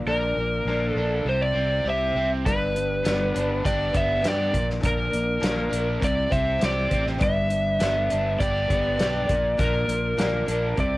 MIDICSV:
0, 0, Header, 1, 6, 480
1, 0, Start_track
1, 0, Tempo, 594648
1, 61, Time_signature, 4, 2, 24, 8
1, 8859, End_track
2, 0, Start_track
2, 0, Title_t, "Electric slide guitar"
2, 0, Program_c, 0, 29
2, 62, Note_on_c, 0, 70, 90
2, 716, Note_off_c, 0, 70, 0
2, 716, Note_on_c, 0, 69, 90
2, 1041, Note_on_c, 0, 72, 82
2, 1051, Note_off_c, 0, 69, 0
2, 1141, Note_on_c, 0, 74, 102
2, 1155, Note_off_c, 0, 72, 0
2, 1513, Note_off_c, 0, 74, 0
2, 1531, Note_on_c, 0, 76, 87
2, 1852, Note_off_c, 0, 76, 0
2, 1987, Note_on_c, 0, 71, 87
2, 2953, Note_on_c, 0, 74, 86
2, 2973, Note_off_c, 0, 71, 0
2, 3195, Note_off_c, 0, 74, 0
2, 3199, Note_on_c, 0, 76, 82
2, 3438, Note_off_c, 0, 76, 0
2, 3451, Note_on_c, 0, 74, 84
2, 3772, Note_off_c, 0, 74, 0
2, 3926, Note_on_c, 0, 70, 88
2, 4878, Note_on_c, 0, 74, 81
2, 4902, Note_off_c, 0, 70, 0
2, 5094, Note_off_c, 0, 74, 0
2, 5100, Note_on_c, 0, 76, 77
2, 5348, Note_off_c, 0, 76, 0
2, 5364, Note_on_c, 0, 74, 92
2, 5688, Note_off_c, 0, 74, 0
2, 5839, Note_on_c, 0, 76, 92
2, 6778, Note_on_c, 0, 74, 86
2, 6819, Note_off_c, 0, 76, 0
2, 7748, Note_on_c, 0, 70, 74
2, 7768, Note_off_c, 0, 74, 0
2, 8716, Note_on_c, 0, 74, 81
2, 8733, Note_off_c, 0, 70, 0
2, 8859, Note_off_c, 0, 74, 0
2, 8859, End_track
3, 0, Start_track
3, 0, Title_t, "Overdriven electric guitar"
3, 0, Program_c, 1, 29
3, 1015, Note_on_c, 1, 48, 65
3, 1242, Note_on_c, 1, 60, 58
3, 1493, Note_on_c, 1, 67, 67
3, 1734, Note_off_c, 1, 60, 0
3, 1978, Note_off_c, 1, 67, 0
3, 1979, Note_off_c, 1, 48, 0
3, 2950, Note_on_c, 1, 67, 64
3, 3421, Note_off_c, 1, 67, 0
3, 3430, Note_on_c, 1, 67, 68
3, 3657, Note_on_c, 1, 46, 69
3, 3666, Note_off_c, 1, 67, 0
3, 3891, Note_off_c, 1, 46, 0
3, 4856, Note_on_c, 1, 48, 59
3, 5341, Note_on_c, 1, 67, 62
3, 5818, Note_off_c, 1, 48, 0
3, 5821, Note_off_c, 1, 67, 0
3, 6792, Note_on_c, 1, 67, 65
3, 7265, Note_off_c, 1, 67, 0
3, 7274, Note_on_c, 1, 67, 65
3, 7500, Note_on_c, 1, 46, 72
3, 7508, Note_off_c, 1, 67, 0
3, 7745, Note_off_c, 1, 46, 0
3, 8700, Note_on_c, 1, 48, 68
3, 8859, Note_off_c, 1, 48, 0
3, 8859, End_track
4, 0, Start_track
4, 0, Title_t, "Steel-string acoustic guitar"
4, 0, Program_c, 2, 25
4, 56, Note_on_c, 2, 50, 81
4, 57, Note_on_c, 2, 46, 76
4, 57, Note_on_c, 2, 53, 84
4, 60, Note_on_c, 2, 70, 91
4, 63, Note_on_c, 2, 58, 86
4, 64, Note_on_c, 2, 62, 94
4, 293, Note_off_c, 2, 70, 0
4, 299, Note_off_c, 2, 50, 0
4, 299, Note_off_c, 2, 53, 0
4, 300, Note_off_c, 2, 46, 0
4, 301, Note_off_c, 2, 62, 0
4, 302, Note_off_c, 2, 58, 0
4, 303, Note_on_c, 2, 70, 50
4, 311, Note_on_c, 2, 62, 50
4, 316, Note_on_c, 2, 53, 43
4, 318, Note_on_c, 2, 58, 48
4, 535, Note_off_c, 2, 53, 0
4, 542, Note_off_c, 2, 58, 0
4, 542, Note_off_c, 2, 70, 0
4, 543, Note_on_c, 2, 46, 69
4, 545, Note_on_c, 2, 50, 71
4, 545, Note_on_c, 2, 53, 76
4, 546, Note_off_c, 2, 62, 0
4, 551, Note_on_c, 2, 58, 87
4, 555, Note_on_c, 2, 62, 84
4, 555, Note_on_c, 2, 70, 79
4, 773, Note_off_c, 2, 70, 0
4, 777, Note_off_c, 2, 62, 0
4, 783, Note_off_c, 2, 46, 0
4, 783, Note_off_c, 2, 53, 0
4, 783, Note_on_c, 2, 70, 53
4, 784, Note_off_c, 2, 50, 0
4, 784, Note_off_c, 2, 58, 0
4, 787, Note_on_c, 2, 62, 51
4, 794, Note_on_c, 2, 58, 45
4, 801, Note_on_c, 2, 53, 45
4, 1019, Note_off_c, 2, 53, 0
4, 1023, Note_off_c, 2, 58, 0
4, 1023, Note_off_c, 2, 70, 0
4, 1023, Note_on_c, 2, 55, 55
4, 1025, Note_off_c, 2, 62, 0
4, 1026, Note_on_c, 2, 60, 57
4, 1034, Note_on_c, 2, 72, 68
4, 1036, Note_on_c, 2, 64, 57
4, 1254, Note_off_c, 2, 72, 0
4, 1260, Note_off_c, 2, 64, 0
4, 1262, Note_off_c, 2, 55, 0
4, 1264, Note_off_c, 2, 60, 0
4, 1264, Note_on_c, 2, 72, 52
4, 1270, Note_on_c, 2, 64, 55
4, 1278, Note_on_c, 2, 60, 48
4, 1499, Note_off_c, 2, 60, 0
4, 1503, Note_off_c, 2, 64, 0
4, 1503, Note_off_c, 2, 72, 0
4, 1504, Note_on_c, 2, 48, 60
4, 1508, Note_on_c, 2, 60, 74
4, 1511, Note_on_c, 2, 55, 63
4, 1512, Note_on_c, 2, 72, 73
4, 1513, Note_on_c, 2, 64, 71
4, 1726, Note_off_c, 2, 72, 0
4, 1735, Note_off_c, 2, 64, 0
4, 1736, Note_on_c, 2, 72, 50
4, 1738, Note_off_c, 2, 60, 0
4, 1743, Note_off_c, 2, 48, 0
4, 1744, Note_on_c, 2, 64, 44
4, 1747, Note_off_c, 2, 55, 0
4, 1748, Note_on_c, 2, 60, 36
4, 1979, Note_off_c, 2, 72, 0
4, 1983, Note_off_c, 2, 64, 0
4, 1985, Note_off_c, 2, 60, 0
4, 1985, Note_on_c, 2, 43, 67
4, 1986, Note_on_c, 2, 55, 82
4, 1987, Note_on_c, 2, 50, 78
4, 1987, Note_on_c, 2, 71, 78
4, 1988, Note_on_c, 2, 59, 84
4, 1990, Note_on_c, 2, 62, 79
4, 2207, Note_off_c, 2, 71, 0
4, 2216, Note_off_c, 2, 59, 0
4, 2216, Note_off_c, 2, 62, 0
4, 2217, Note_on_c, 2, 71, 51
4, 2224, Note_off_c, 2, 43, 0
4, 2224, Note_off_c, 2, 55, 0
4, 2225, Note_off_c, 2, 50, 0
4, 2225, Note_on_c, 2, 59, 45
4, 2226, Note_on_c, 2, 62, 48
4, 2234, Note_on_c, 2, 55, 38
4, 2445, Note_off_c, 2, 59, 0
4, 2450, Note_off_c, 2, 55, 0
4, 2450, Note_off_c, 2, 62, 0
4, 2452, Note_on_c, 2, 43, 73
4, 2453, Note_off_c, 2, 71, 0
4, 2454, Note_on_c, 2, 50, 74
4, 2455, Note_on_c, 2, 59, 74
4, 2459, Note_on_c, 2, 55, 84
4, 2459, Note_on_c, 2, 62, 82
4, 2463, Note_on_c, 2, 71, 75
4, 2692, Note_off_c, 2, 71, 0
4, 2697, Note_off_c, 2, 43, 0
4, 2698, Note_off_c, 2, 50, 0
4, 2698, Note_off_c, 2, 62, 0
4, 2699, Note_off_c, 2, 59, 0
4, 2701, Note_off_c, 2, 55, 0
4, 2701, Note_on_c, 2, 71, 59
4, 2707, Note_on_c, 2, 62, 51
4, 2711, Note_on_c, 2, 59, 47
4, 2714, Note_on_c, 2, 55, 42
4, 2925, Note_off_c, 2, 55, 0
4, 2928, Note_off_c, 2, 59, 0
4, 2929, Note_off_c, 2, 62, 0
4, 2935, Note_on_c, 2, 55, 57
4, 2936, Note_off_c, 2, 71, 0
4, 2937, Note_on_c, 2, 59, 61
4, 2939, Note_on_c, 2, 62, 58
4, 2945, Note_on_c, 2, 71, 62
4, 3158, Note_off_c, 2, 71, 0
4, 3163, Note_off_c, 2, 62, 0
4, 3166, Note_off_c, 2, 59, 0
4, 3167, Note_on_c, 2, 71, 59
4, 3171, Note_off_c, 2, 55, 0
4, 3173, Note_on_c, 2, 62, 51
4, 3176, Note_on_c, 2, 59, 56
4, 3181, Note_on_c, 2, 55, 46
4, 3397, Note_off_c, 2, 71, 0
4, 3399, Note_off_c, 2, 59, 0
4, 3399, Note_off_c, 2, 62, 0
4, 3399, Note_on_c, 2, 43, 67
4, 3400, Note_off_c, 2, 55, 0
4, 3403, Note_on_c, 2, 50, 65
4, 3407, Note_on_c, 2, 71, 65
4, 3408, Note_on_c, 2, 59, 74
4, 3409, Note_on_c, 2, 62, 67
4, 3410, Note_on_c, 2, 55, 70
4, 3639, Note_off_c, 2, 62, 0
4, 3639, Note_off_c, 2, 71, 0
4, 3642, Note_on_c, 2, 70, 48
4, 3648, Note_on_c, 2, 62, 52
4, 3650, Note_off_c, 2, 43, 0
4, 3652, Note_off_c, 2, 50, 0
4, 3654, Note_off_c, 2, 55, 0
4, 3654, Note_off_c, 2, 59, 0
4, 3657, Note_on_c, 2, 53, 40
4, 3658, Note_on_c, 2, 58, 40
4, 3872, Note_off_c, 2, 58, 0
4, 3873, Note_on_c, 2, 46, 72
4, 3874, Note_off_c, 2, 53, 0
4, 3878, Note_on_c, 2, 50, 86
4, 3879, Note_off_c, 2, 62, 0
4, 3880, Note_off_c, 2, 70, 0
4, 3881, Note_on_c, 2, 58, 87
4, 3883, Note_on_c, 2, 53, 78
4, 3889, Note_on_c, 2, 62, 82
4, 3890, Note_on_c, 2, 70, 76
4, 4105, Note_off_c, 2, 70, 0
4, 4114, Note_on_c, 2, 70, 53
4, 4116, Note_off_c, 2, 58, 0
4, 4116, Note_off_c, 2, 62, 0
4, 4124, Note_off_c, 2, 53, 0
4, 4126, Note_on_c, 2, 58, 43
4, 4126, Note_on_c, 2, 62, 47
4, 4127, Note_off_c, 2, 46, 0
4, 4130, Note_off_c, 2, 50, 0
4, 4134, Note_on_c, 2, 53, 42
4, 4351, Note_off_c, 2, 53, 0
4, 4358, Note_on_c, 2, 46, 75
4, 4359, Note_off_c, 2, 62, 0
4, 4360, Note_off_c, 2, 58, 0
4, 4361, Note_on_c, 2, 53, 82
4, 4363, Note_off_c, 2, 70, 0
4, 4364, Note_on_c, 2, 50, 81
4, 4369, Note_on_c, 2, 62, 77
4, 4370, Note_on_c, 2, 58, 75
4, 4373, Note_on_c, 2, 70, 80
4, 4586, Note_off_c, 2, 70, 0
4, 4594, Note_off_c, 2, 62, 0
4, 4595, Note_off_c, 2, 58, 0
4, 4596, Note_on_c, 2, 70, 52
4, 4598, Note_off_c, 2, 53, 0
4, 4603, Note_on_c, 2, 62, 54
4, 4605, Note_on_c, 2, 58, 48
4, 4607, Note_on_c, 2, 53, 43
4, 4610, Note_off_c, 2, 46, 0
4, 4613, Note_off_c, 2, 50, 0
4, 4837, Note_off_c, 2, 53, 0
4, 4837, Note_off_c, 2, 58, 0
4, 4840, Note_on_c, 2, 55, 57
4, 4840, Note_on_c, 2, 60, 56
4, 4842, Note_off_c, 2, 62, 0
4, 4845, Note_on_c, 2, 64, 60
4, 4849, Note_off_c, 2, 70, 0
4, 4854, Note_on_c, 2, 72, 69
4, 5079, Note_off_c, 2, 72, 0
4, 5084, Note_off_c, 2, 64, 0
4, 5087, Note_off_c, 2, 60, 0
4, 5089, Note_on_c, 2, 72, 59
4, 5091, Note_off_c, 2, 55, 0
4, 5093, Note_on_c, 2, 64, 49
4, 5097, Note_on_c, 2, 60, 44
4, 5310, Note_off_c, 2, 72, 0
4, 5311, Note_off_c, 2, 64, 0
4, 5311, Note_on_c, 2, 48, 67
4, 5313, Note_off_c, 2, 60, 0
4, 5316, Note_on_c, 2, 55, 76
4, 5319, Note_on_c, 2, 72, 74
4, 5321, Note_on_c, 2, 64, 79
4, 5322, Note_on_c, 2, 60, 69
4, 5547, Note_off_c, 2, 72, 0
4, 5555, Note_off_c, 2, 64, 0
4, 5557, Note_on_c, 2, 72, 49
4, 5559, Note_off_c, 2, 60, 0
4, 5565, Note_on_c, 2, 64, 47
4, 5566, Note_off_c, 2, 48, 0
4, 5569, Note_off_c, 2, 55, 0
4, 5569, Note_on_c, 2, 60, 37
4, 5796, Note_on_c, 2, 55, 84
4, 5797, Note_off_c, 2, 60, 0
4, 5798, Note_on_c, 2, 43, 83
4, 5799, Note_on_c, 2, 50, 84
4, 5800, Note_on_c, 2, 59, 90
4, 5801, Note_off_c, 2, 64, 0
4, 5802, Note_off_c, 2, 72, 0
4, 5804, Note_on_c, 2, 62, 85
4, 5806, Note_on_c, 2, 71, 95
4, 6029, Note_off_c, 2, 71, 0
4, 6031, Note_off_c, 2, 62, 0
4, 6038, Note_off_c, 2, 59, 0
4, 6039, Note_on_c, 2, 71, 52
4, 6041, Note_on_c, 2, 62, 49
4, 6045, Note_off_c, 2, 55, 0
4, 6048, Note_on_c, 2, 59, 47
4, 6049, Note_off_c, 2, 43, 0
4, 6050, Note_off_c, 2, 50, 0
4, 6054, Note_on_c, 2, 55, 39
4, 6282, Note_off_c, 2, 55, 0
4, 6285, Note_off_c, 2, 62, 0
4, 6286, Note_off_c, 2, 59, 0
4, 6286, Note_on_c, 2, 43, 72
4, 6287, Note_off_c, 2, 71, 0
4, 6289, Note_on_c, 2, 50, 83
4, 6291, Note_on_c, 2, 55, 82
4, 6294, Note_on_c, 2, 62, 89
4, 6296, Note_on_c, 2, 59, 79
4, 6297, Note_on_c, 2, 71, 83
4, 6527, Note_off_c, 2, 71, 0
4, 6529, Note_off_c, 2, 62, 0
4, 6534, Note_off_c, 2, 43, 0
4, 6535, Note_off_c, 2, 50, 0
4, 6536, Note_off_c, 2, 55, 0
4, 6537, Note_on_c, 2, 71, 61
4, 6539, Note_off_c, 2, 59, 0
4, 6539, Note_on_c, 2, 62, 50
4, 6548, Note_on_c, 2, 59, 53
4, 6554, Note_on_c, 2, 55, 42
4, 6751, Note_off_c, 2, 55, 0
4, 6755, Note_off_c, 2, 59, 0
4, 6757, Note_off_c, 2, 62, 0
4, 6760, Note_on_c, 2, 55, 57
4, 6764, Note_on_c, 2, 59, 57
4, 6766, Note_off_c, 2, 71, 0
4, 6767, Note_on_c, 2, 62, 63
4, 6776, Note_on_c, 2, 71, 69
4, 6994, Note_off_c, 2, 71, 0
4, 7001, Note_off_c, 2, 62, 0
4, 7004, Note_on_c, 2, 71, 62
4, 7006, Note_off_c, 2, 55, 0
4, 7006, Note_off_c, 2, 59, 0
4, 7011, Note_on_c, 2, 62, 52
4, 7016, Note_on_c, 2, 55, 47
4, 7016, Note_on_c, 2, 59, 54
4, 7234, Note_off_c, 2, 55, 0
4, 7237, Note_off_c, 2, 59, 0
4, 7237, Note_off_c, 2, 62, 0
4, 7242, Note_off_c, 2, 71, 0
4, 7242, Note_on_c, 2, 50, 74
4, 7243, Note_on_c, 2, 43, 66
4, 7244, Note_on_c, 2, 55, 74
4, 7246, Note_on_c, 2, 62, 77
4, 7247, Note_on_c, 2, 59, 74
4, 7251, Note_on_c, 2, 71, 68
4, 7475, Note_off_c, 2, 71, 0
4, 7478, Note_off_c, 2, 62, 0
4, 7479, Note_on_c, 2, 70, 58
4, 7488, Note_off_c, 2, 59, 0
4, 7488, Note_on_c, 2, 62, 55
4, 7491, Note_on_c, 2, 58, 49
4, 7492, Note_off_c, 2, 43, 0
4, 7492, Note_off_c, 2, 50, 0
4, 7492, Note_off_c, 2, 55, 0
4, 7500, Note_on_c, 2, 53, 46
4, 7721, Note_off_c, 2, 53, 0
4, 7723, Note_off_c, 2, 62, 0
4, 7726, Note_on_c, 2, 46, 78
4, 7727, Note_off_c, 2, 58, 0
4, 7730, Note_off_c, 2, 70, 0
4, 7730, Note_on_c, 2, 53, 81
4, 7732, Note_on_c, 2, 50, 78
4, 7733, Note_on_c, 2, 62, 95
4, 7737, Note_on_c, 2, 58, 83
4, 7743, Note_on_c, 2, 70, 87
4, 7950, Note_off_c, 2, 70, 0
4, 7955, Note_off_c, 2, 62, 0
4, 7957, Note_off_c, 2, 58, 0
4, 7960, Note_off_c, 2, 53, 0
4, 7960, Note_on_c, 2, 70, 51
4, 7964, Note_on_c, 2, 62, 44
4, 7967, Note_on_c, 2, 58, 47
4, 7970, Note_on_c, 2, 53, 39
4, 7974, Note_off_c, 2, 46, 0
4, 7977, Note_off_c, 2, 50, 0
4, 8204, Note_off_c, 2, 53, 0
4, 8204, Note_off_c, 2, 58, 0
4, 8207, Note_off_c, 2, 70, 0
4, 8208, Note_off_c, 2, 62, 0
4, 8210, Note_on_c, 2, 46, 69
4, 8210, Note_on_c, 2, 50, 77
4, 8214, Note_on_c, 2, 53, 78
4, 8214, Note_on_c, 2, 58, 80
4, 8216, Note_on_c, 2, 70, 82
4, 8217, Note_on_c, 2, 62, 83
4, 8433, Note_off_c, 2, 70, 0
4, 8434, Note_off_c, 2, 62, 0
4, 8441, Note_off_c, 2, 58, 0
4, 8443, Note_off_c, 2, 53, 0
4, 8443, Note_on_c, 2, 62, 52
4, 8443, Note_on_c, 2, 70, 56
4, 8451, Note_on_c, 2, 58, 57
4, 8452, Note_on_c, 2, 53, 49
4, 8455, Note_off_c, 2, 46, 0
4, 8455, Note_off_c, 2, 50, 0
4, 8677, Note_off_c, 2, 53, 0
4, 8680, Note_on_c, 2, 55, 58
4, 8681, Note_off_c, 2, 58, 0
4, 8684, Note_on_c, 2, 60, 58
4, 8686, Note_off_c, 2, 62, 0
4, 8688, Note_off_c, 2, 70, 0
4, 8689, Note_on_c, 2, 64, 62
4, 8691, Note_on_c, 2, 72, 64
4, 8859, Note_off_c, 2, 55, 0
4, 8859, Note_off_c, 2, 60, 0
4, 8859, Note_off_c, 2, 64, 0
4, 8859, Note_off_c, 2, 72, 0
4, 8859, End_track
5, 0, Start_track
5, 0, Title_t, "Fingered electric bass"
5, 0, Program_c, 3, 33
5, 45, Note_on_c, 3, 34, 89
5, 279, Note_off_c, 3, 34, 0
5, 296, Note_on_c, 3, 34, 82
5, 520, Note_off_c, 3, 34, 0
5, 525, Note_on_c, 3, 34, 91
5, 759, Note_off_c, 3, 34, 0
5, 769, Note_on_c, 3, 34, 79
5, 1001, Note_off_c, 3, 34, 0
5, 1008, Note_on_c, 3, 36, 79
5, 1241, Note_off_c, 3, 36, 0
5, 1257, Note_on_c, 3, 36, 81
5, 1482, Note_off_c, 3, 36, 0
5, 1487, Note_on_c, 3, 36, 89
5, 1720, Note_off_c, 3, 36, 0
5, 1738, Note_on_c, 3, 36, 76
5, 1966, Note_off_c, 3, 36, 0
5, 1983, Note_on_c, 3, 31, 78
5, 2435, Note_off_c, 3, 31, 0
5, 2471, Note_on_c, 3, 31, 84
5, 2692, Note_off_c, 3, 31, 0
5, 2711, Note_on_c, 3, 31, 79
5, 2933, Note_off_c, 3, 31, 0
5, 2948, Note_on_c, 3, 31, 91
5, 3171, Note_off_c, 3, 31, 0
5, 3187, Note_on_c, 3, 31, 81
5, 3410, Note_off_c, 3, 31, 0
5, 3427, Note_on_c, 3, 43, 80
5, 3650, Note_off_c, 3, 43, 0
5, 3666, Note_on_c, 3, 34, 81
5, 3890, Note_off_c, 3, 34, 0
5, 3902, Note_on_c, 3, 34, 79
5, 4128, Note_off_c, 3, 34, 0
5, 4146, Note_on_c, 3, 34, 88
5, 4370, Note_off_c, 3, 34, 0
5, 4379, Note_on_c, 3, 34, 88
5, 4606, Note_off_c, 3, 34, 0
5, 4618, Note_on_c, 3, 34, 79
5, 4845, Note_off_c, 3, 34, 0
5, 4868, Note_on_c, 3, 36, 88
5, 5091, Note_off_c, 3, 36, 0
5, 5097, Note_on_c, 3, 36, 83
5, 5325, Note_off_c, 3, 36, 0
5, 5351, Note_on_c, 3, 36, 94
5, 5572, Note_off_c, 3, 36, 0
5, 5585, Note_on_c, 3, 33, 81
5, 5809, Note_off_c, 3, 33, 0
5, 5824, Note_on_c, 3, 31, 81
5, 6274, Note_off_c, 3, 31, 0
5, 6312, Note_on_c, 3, 31, 95
5, 6533, Note_off_c, 3, 31, 0
5, 6558, Note_on_c, 3, 31, 76
5, 6776, Note_off_c, 3, 31, 0
5, 6780, Note_on_c, 3, 31, 83
5, 7006, Note_off_c, 3, 31, 0
5, 7023, Note_on_c, 3, 31, 85
5, 7248, Note_off_c, 3, 31, 0
5, 7273, Note_on_c, 3, 35, 83
5, 7493, Note_off_c, 3, 35, 0
5, 7503, Note_on_c, 3, 34, 85
5, 7728, Note_off_c, 3, 34, 0
5, 7738, Note_on_c, 3, 34, 82
5, 7965, Note_off_c, 3, 34, 0
5, 7977, Note_on_c, 3, 34, 89
5, 8205, Note_off_c, 3, 34, 0
5, 8218, Note_on_c, 3, 34, 85
5, 8445, Note_off_c, 3, 34, 0
5, 8460, Note_on_c, 3, 34, 83
5, 8686, Note_off_c, 3, 34, 0
5, 8703, Note_on_c, 3, 36, 86
5, 8859, Note_off_c, 3, 36, 0
5, 8859, End_track
6, 0, Start_track
6, 0, Title_t, "Drums"
6, 1987, Note_on_c, 9, 36, 86
6, 1987, Note_on_c, 9, 42, 71
6, 2068, Note_off_c, 9, 36, 0
6, 2068, Note_off_c, 9, 42, 0
6, 2229, Note_on_c, 9, 42, 53
6, 2310, Note_off_c, 9, 42, 0
6, 2464, Note_on_c, 9, 42, 70
6, 2474, Note_on_c, 9, 38, 99
6, 2545, Note_off_c, 9, 42, 0
6, 2555, Note_off_c, 9, 38, 0
6, 2711, Note_on_c, 9, 42, 53
6, 2791, Note_off_c, 9, 42, 0
6, 2949, Note_on_c, 9, 36, 79
6, 2953, Note_on_c, 9, 42, 78
6, 3030, Note_off_c, 9, 36, 0
6, 3034, Note_off_c, 9, 42, 0
6, 3185, Note_on_c, 9, 42, 55
6, 3186, Note_on_c, 9, 36, 82
6, 3266, Note_off_c, 9, 42, 0
6, 3267, Note_off_c, 9, 36, 0
6, 3425, Note_on_c, 9, 42, 78
6, 3434, Note_on_c, 9, 38, 93
6, 3505, Note_off_c, 9, 42, 0
6, 3515, Note_off_c, 9, 38, 0
6, 3666, Note_on_c, 9, 36, 72
6, 3668, Note_on_c, 9, 42, 56
6, 3747, Note_off_c, 9, 36, 0
6, 3749, Note_off_c, 9, 42, 0
6, 3795, Note_on_c, 9, 38, 29
6, 3876, Note_off_c, 9, 38, 0
6, 3903, Note_on_c, 9, 42, 81
6, 3905, Note_on_c, 9, 36, 95
6, 3984, Note_off_c, 9, 42, 0
6, 3985, Note_off_c, 9, 36, 0
6, 4145, Note_on_c, 9, 42, 58
6, 4225, Note_off_c, 9, 42, 0
6, 4383, Note_on_c, 9, 42, 83
6, 4393, Note_on_c, 9, 38, 106
6, 4464, Note_off_c, 9, 42, 0
6, 4473, Note_off_c, 9, 38, 0
6, 4625, Note_on_c, 9, 42, 62
6, 4705, Note_off_c, 9, 42, 0
6, 4862, Note_on_c, 9, 36, 86
6, 4865, Note_on_c, 9, 42, 73
6, 4943, Note_off_c, 9, 36, 0
6, 4946, Note_off_c, 9, 42, 0
6, 5102, Note_on_c, 9, 36, 76
6, 5102, Note_on_c, 9, 42, 53
6, 5182, Note_off_c, 9, 42, 0
6, 5183, Note_off_c, 9, 36, 0
6, 5340, Note_on_c, 9, 42, 78
6, 5350, Note_on_c, 9, 38, 92
6, 5421, Note_off_c, 9, 42, 0
6, 5430, Note_off_c, 9, 38, 0
6, 5579, Note_on_c, 9, 42, 59
6, 5581, Note_on_c, 9, 36, 75
6, 5660, Note_off_c, 9, 42, 0
6, 5662, Note_off_c, 9, 36, 0
6, 5707, Note_on_c, 9, 38, 33
6, 5788, Note_off_c, 9, 38, 0
6, 5817, Note_on_c, 9, 42, 70
6, 5821, Note_on_c, 9, 36, 102
6, 5898, Note_off_c, 9, 42, 0
6, 5902, Note_off_c, 9, 36, 0
6, 6056, Note_on_c, 9, 42, 58
6, 6137, Note_off_c, 9, 42, 0
6, 6297, Note_on_c, 9, 42, 73
6, 6307, Note_on_c, 9, 38, 98
6, 6378, Note_off_c, 9, 42, 0
6, 6388, Note_off_c, 9, 38, 0
6, 6539, Note_on_c, 9, 42, 55
6, 6620, Note_off_c, 9, 42, 0
6, 6783, Note_on_c, 9, 36, 84
6, 6783, Note_on_c, 9, 42, 76
6, 6864, Note_off_c, 9, 36, 0
6, 6864, Note_off_c, 9, 42, 0
6, 7024, Note_on_c, 9, 36, 80
6, 7024, Note_on_c, 9, 42, 56
6, 7104, Note_off_c, 9, 36, 0
6, 7105, Note_off_c, 9, 42, 0
6, 7260, Note_on_c, 9, 42, 76
6, 7270, Note_on_c, 9, 38, 90
6, 7341, Note_off_c, 9, 42, 0
6, 7351, Note_off_c, 9, 38, 0
6, 7501, Note_on_c, 9, 42, 61
6, 7503, Note_on_c, 9, 36, 76
6, 7582, Note_off_c, 9, 42, 0
6, 7584, Note_off_c, 9, 36, 0
6, 7741, Note_on_c, 9, 42, 71
6, 7743, Note_on_c, 9, 36, 92
6, 7821, Note_off_c, 9, 42, 0
6, 7824, Note_off_c, 9, 36, 0
6, 7984, Note_on_c, 9, 42, 62
6, 8065, Note_off_c, 9, 42, 0
6, 8223, Note_on_c, 9, 42, 77
6, 8233, Note_on_c, 9, 38, 95
6, 8304, Note_off_c, 9, 42, 0
6, 8313, Note_off_c, 9, 38, 0
6, 8462, Note_on_c, 9, 42, 65
6, 8543, Note_off_c, 9, 42, 0
6, 8697, Note_on_c, 9, 42, 78
6, 8702, Note_on_c, 9, 36, 79
6, 8778, Note_off_c, 9, 42, 0
6, 8782, Note_off_c, 9, 36, 0
6, 8859, End_track
0, 0, End_of_file